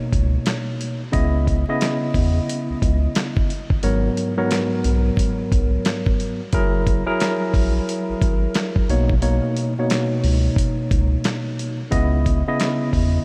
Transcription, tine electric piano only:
0.00 1.01 B2 loud
0.00 1.01 A#3 medium
0.00 1.01 D#4 medium
0.00 1.01 C#5 loud
1.12 1.63 C#3 medium
1.12 1.63 B3 medium
1.12 1.63 E4 medium
1.12 1.63 D#5 loud
1.69 3.50 C#3 medium
1.69 3.51 B3 medium
1.69 3.51 E4 medium
1.69 3.51 D#5 loud
3.83 4.33 G#2 medium
3.83 4.33 F#3 medium
3.83 4.33 B3 medium
3.83 4.33 A#4 medium
3.83 4.33 C#5 loud
4.37 6.39 G#2 medium
4.37 6.39 F#3 loud
4.37 6.39 B3 loud
4.37 6.39 A#4 medium
4.37 6.40 C#5 loud
6.53 7.03 F#3 medium
6.53 7.03 E4 medium
6.53 7.03 G#4 medium
6.53 7.03 A#4 loud
7.06 8.88 F#3 medium
7.06 8.88 E4 medium
7.06 8.88 G#4 medium
7.06 8.88 A#4 loud
8.89 9.13 B2 loud
8.89 9.13 A#3 medium
8.89 9.13 D#4 medium
8.89 9.13 C#5 loud
9.21 9.72 B2 medium
9.21 9.72 A#3 loud
9.21 9.72 D#4 medium
9.21 9.72 C#5 loud
9.78 11.79 B2 loud
9.78 11.80 A#3 medium
9.78 11.80 D#4 medium
9.78 11.80 C#5 loud
11.90 12.41 C#3 loud
11.90 12.41 B3 loud
11.90 12.42 E4 medium
11.90 12.42 D#5 loud
12.47 13.25 C#3 loud
12.47 13.25 B3 medium
12.47 13.25 E4 medium
12.47 13.25 D#5 loud

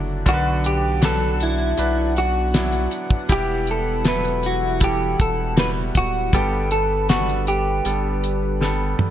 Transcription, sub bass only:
0.00 0.24 F#1 medium
0.26 1.74 B1 loud
1.78 2.88 B1 loud
3.30 5.16 E1 medium
5.20 5.92 E1 loud
5.95 6.31 D1 medium
6.33 7.81 G1 loud
7.85 8.95 G1 loud

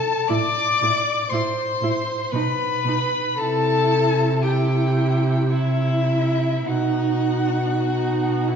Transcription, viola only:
0.29 0.37 E4 medium
0.83 0.91 E4 medium
1.33 1.41 E4 medium
1.83 1.91 E4 medium
2.35 2.43 D#4 medium
2.88 2.96 D#4 medium
3.40 4.41 E4 medium
4.45 5.51 E4 medium
5.54 6.67 E4 medium
6.67 7.73 D#4 medium
7.86 8.49 D#4 medium
8.47 8.56 E4 medium

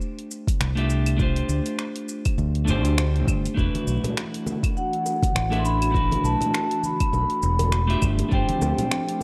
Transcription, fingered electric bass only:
0.60 1.41 C2 medium
1.49 1.59 D2 medium
2.38 2.70 D2 loud
2.68 2.84 G1 loud
2.84 3.27 D2 medium
3.27 3.47 G1 medium
3.57 3.67 E1 loud
3.87 3.97 B1 medium
5.35 6.16 A1 medium
6.24 6.34 B1 medium
7.13 7.23 B1 medium
7.43 7.94 E1 loud
8.02 8.22 G1 loud
8.32 8.42 G1 loud
8.61 8.72 D2 medium

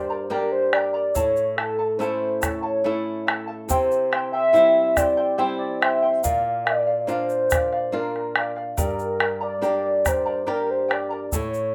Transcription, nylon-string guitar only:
0.00 1.11 G2 medium
0.00 0.27 A#3 soft
0.00 0.27 D4 soft
0.00 0.27 G4 medium
0.30 1.12 A#3 soft
0.30 1.12 D4 soft
0.30 1.13 G4 medium
1.15 3.65 A2 medium
1.99 2.82 A3 soft
1.99 2.82 C#4 soft
1.99 2.82 E4 soft
2.84 3.67 A3 medium
2.84 3.67 C#4 soft
2.84 3.67 E4 medium
3.69 6.19 C3 medium
4.53 5.36 G3 medium
4.53 5.36 C4 soft
4.53 5.36 E4 medium
5.38 6.21 G3 soft
5.38 6.21 C4 soft
5.38 6.21 E4 medium
6.24 8.74 A#2 medium
7.07 7.90 A#3 medium
7.07 7.91 D4 soft
7.07 7.91 F4 soft
7.92 8.75 A#3 medium
7.92 8.75 D4 soft
7.92 8.76 F4 medium
8.77 11.28 G2 medium
9.62 10.45 A#3 soft
9.62 10.45 D4 soft
9.62 10.45 G4 medium
10.47 11.30 A#3 soft
10.47 11.30 D4 soft
10.47 11.30 G4 medium
11.34 11.75 A2 medium

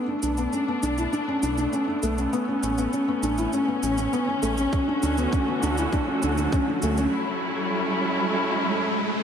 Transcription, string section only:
0.00 4.68 A3 medium
0.00 4.68 B3 medium
0.00 2.30 D4 medium
2.33 7.09 C#4 medium
4.73 7.10 D3 medium
4.73 7.10 A3 medium
4.73 7.10 F#4 medium
7.13 9.23 F#3 medium
7.13 9.23 C#4 medium
7.13 9.23 E4 medium
7.13 9.23 A4 medium

